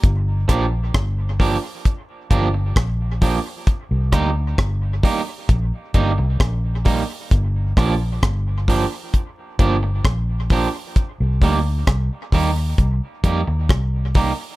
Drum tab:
HH |px-opx-o|px-opx-o|popopx-o|popopx-o|
SD |-rr---r-|-rr---r-|-rr---r-|--r---r-|
BD |oooooooo|oooooooo|oooooooo|oooooooo|